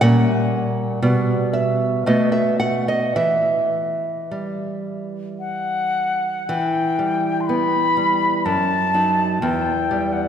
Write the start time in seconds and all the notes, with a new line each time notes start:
0.01 A#2 G3 C#4 F#5
1.02 B2 G3 B3
1.53 E5
2.06 B2 A3 B3 D#5
2.32 E5
2.60 F#5
2.88 D#5
3.16 E3 E5
4.31 G3
5.40 F#5
6.49 E3 G5
6.99 G3
7.41 C6
7.47 B3 B5
7.97 G3
8.45 F#2 A5
8.94 F#3 D#4
9.41 E2 G5
9.91 G3
10.13 F#5